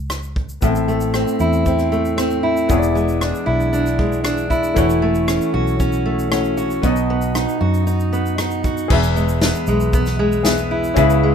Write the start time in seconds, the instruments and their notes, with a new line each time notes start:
Already playing: fingered electric bass C#2
0.10 cross-stick, shaker
0.23 shaker
0.36 kick
0.49 shaker
0.61 fingered electric bass A1, steel-string acoustic guitar A2, grand piano B3 E4 A4 E5, kick, shaker
0.67 grand piano C4
0.75 shaker
0.88 steel-string acoustic guitar A3, shaker
1.01 shaker
1.14 steel-string acoustic guitar C4, cross-stick, shaker
1.28 shaker
1.40 fingered electric bass E2, steel-string acoustic guitar E4, shaker
1.53 shaker
1.66 steel-string acoustic guitar C4, kick, shaker
1.79 cross-stick, shaker
1.92 steel-string acoustic guitar A3, shaker
2.05 shaker
2.17 steel-string acoustic guitar C4, cross-stick, shaker
2.30 shaker
2.43 steel-string acoustic guitar E4
2.57 shaker
2.68 fingered electric bass E1, steel-string acoustic guitar E2, grand piano B3 E4 G#4, kick, shaker
2.72 grand piano C#5
2.77 grand piano D5
2.83 shaker
2.95 steel-string acoustic guitar G#3, shaker
3.08 shaker
3.21 steel-string acoustic guitar D4, cross-stick, shaker
3.35 shaker
3.46 fingered electric bass B1, steel-string acoustic guitar E4
3.60 shaker
3.73 steel-string acoustic guitar D4, shaker
3.86 cross-stick, shaker
3.99 steel-string acoustic guitar G#3, kick
4.12 shaker
4.24 steel-string acoustic guitar D4, cross-stick, shaker
4.38 shaker
4.50 steel-string acoustic guitar E4, kick, shaker
4.64 shaker
4.74 fingered electric bass E1, steel-string acoustic guitar E3, grand piano A3 E4 F#4 C#5, kick, shaker
4.90 shaker
5.02 steel-string acoustic guitar A3
5.15 shaker
5.27 steel-string acoustic guitar C#4, cross-stick, shaker
5.41 shaker
5.54 fingered electric bass B1, steel-string acoustic guitar F#4
5.67 shaker
5.80 steel-string acoustic guitar C#4, kick, shaker
5.93 shaker
6.06 steel-string acoustic guitar A3
6.19 shaker
6.31 grand piano A3 E4 F#4 C#5, steel-string acoustic guitar C#4, cross-stick, shaker
6.44 shaker
6.57 steel-string acoustic guitar F#4, shaker
6.71 shaker
6.82 fingered electric bass B1, steel-string acoustic guitar B2, grand piano B3 D#4 F#4, kick, shaker
6.86 grand piano D#5
6.96 shaker
7.10 steel-string acoustic guitar B3
7.22 shaker
7.35 steel-string acoustic guitar D#4, cross-stick, shaker
7.49 shaker
7.61 fingered electric bass F#2, steel-string acoustic guitar F#4
7.74 shaker
7.87 steel-string acoustic guitar D#4, shaker
8.00 shaker
8.13 steel-string acoustic guitar B3, shaker
8.26 shaker
8.38 steel-string acoustic guitar D#4, cross-stick, shaker
8.51 shaker
8.64 steel-string acoustic guitar F#4, kick, shaker
8.77 shaker
8.88 fingered electric bass E1, steel-string acoustic guitar E2, grand piano G#4 B4, kick, crash
8.93 grand piano E5
9.03 shaker
9.16 steel-string acoustic guitar G#3, shaker
9.29 shaker
9.42 steel-string acoustic guitar B3, snare, shaker
9.55 shaker
9.67 fingered electric bass B1, steel-string acoustic guitar G#3, shaker
9.80 shaker
9.93 steel-string acoustic guitar B3, kick, shaker
10.06 snare, shaker
10.19 steel-string acoustic guitar G#3
10.32 shaker
10.43 steel-string acoustic guitar B3, grand piano G#4 B4 E5, snare, shaker
10.57 shaker
10.71 steel-string acoustic guitar E4
10.84 shaker
10.94 fingered electric bass C#2, steel-string acoustic guitar C#3, grand piano C#4 E4 G#4 B4, kick, shaker
10.98 grand piano E5
11.10 shaker
11.23 steel-string acoustic guitar G#3